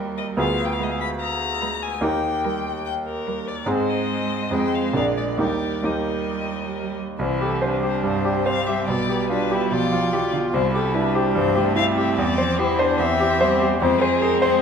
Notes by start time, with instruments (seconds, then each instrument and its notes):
Already playing: grand piano D#2 A#3 D#4 A#4, cello G3, violin A#4
0.18 violin D#5
0.37 grand piano D2 B3 F4 G#4, violin F5
0.65 violin G5
0.73 violin F5
0.79 cello G#3, violin B4 D#5
0.91 violin F5
1.01 violin B5
1.21 violin A#5
1.62 cello G#3, violin B4
1.83 violin G#5
2.01 grand piano D#2 A#3 D#4 G4, violin G5
2.44 cello G3, violin A#4
2.86 violin G5
3.07 violin A#4
3.27 cello G3, violin A#4
3.48 violin D5
3.66 grand piano G#2 G#3 C4 G#4, cello G#3, violin C5
3.89 violin D#5
4.51 grand piano F2 G#3 C4 G#4, cello G#3, violin C5 G5
4.74 violin F5
4.93 grand piano A#1 A#3 D4 G#4, cello G#3, violin D5 F5
5.17 violin D5
5.38 grand piano D#2 A#3 D#4 G4, cello G3, violin A#4 D5
5.83 grand piano D#2 A#3 D#4 G4, cello G3, violin A#4 D#5
7.19 grand piano C2, cello E3, violin E4 C5
7.41 grand piano G4, violin A4
7.62 cello G3, violin D4 B4, grand piano C5
7.83 grand piano G4, violin C5
8.03 grand piano G2, violin C5
8.25 grand piano G4
8.46 violin C4 F5, grand piano C5
8.67 grand piano G4, violin E5
8.87 grand piano B1, cello G3, violin B3 D5
9.09 violin B3, grand piano G4
9.30 violin D4 B4, grand piano F4
9.50 violin E4, grand piano G4
9.72 grand piano B1, cello F3, violin F4 D5
9.92 grand piano F4, violin F4
10.13 cello E3, grand piano G4
10.32 cello D3, grand piano F4
10.53 grand piano C2, cello G3, violin E4 C5
10.74 grand piano G4, violin A4
10.94 cello G3, violin D4 B4, grand piano E4
11.14 grand piano G4, violin C5
11.34 grand piano G2, cello E3, violin C5
11.55 cello A3, grand piano G4
11.76 violin C4 F5, grand piano E4
11.97 grand piano G4, violin E5
12.17 grand piano E2, cello G3, violin D5
12.38 cello F3, grand piano C5
12.58 cello E3, violin E4 C5, grand piano G4
12.79 violin D4, grand piano C5
12.98 grand piano E2, violin C4 E5
13.20 grand piano G4
13.40 cello G3, violin C4, grand piano C5
13.61 grand piano G4
13.81 grand piano F2, cello G#3, violin C4 C5
14.01 violin G#4, grand piano C5
14.21 grand piano G#4, violin A#4
14.42 grand piano C5, violin C5